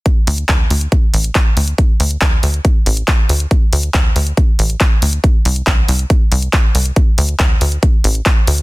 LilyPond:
<<
  \new Staff \with { instrumentName = "Analog synth bass" } { \clef bass \time 4/4 \key c \mixolydian \tempo 4 = 139 r8 d,8 d,8 d,8 r8 a,,8 r8 d,8 | r8 d,8 d,8 d,8 r8 a,,8 r8 d,8 | r8 d,8 d,8 d,8 r8 a,,8 r8 d,8 | r8 c,8 c,8 c,8 r8 c,8 r8 c,8 |
r8 d,8 d,8 d,8 r8 a,,8 r8 d,8 | }
  \new DrumStaff \with { instrumentName = "Drums" } \drummode { \time 4/4 <hh bd>8 hho16 hh16 <hc hh bd>8 hho16 hh16 <hh bd>8 hho16 hh16 <hc hh bd>8 hho16 hh16 | <hh bd>8 hho16 hh16 <hc hh bd>8 hho16 hh16 <hh bd>8 hho16 hh16 <hc hh bd>8 hho16 hh16 | <hh bd>8 hho16 hh16 <hc hh bd>8 hho16 hh16 <hh bd>8 hho16 hh16 <hc hh bd>8 hho16 hh16 | <hh bd>8 hho16 hh16 <hc hh bd>8 hho16 hh16 <hh bd>8 hho16 hh16 <hc hh bd>8 hho16 hh16 |
<hh bd>8 hho16 hh16 <hc hh bd>8 hho16 hh16 <hh bd>8 hho16 hh16 <hc hh bd>8 hho16 hh16 | }
>>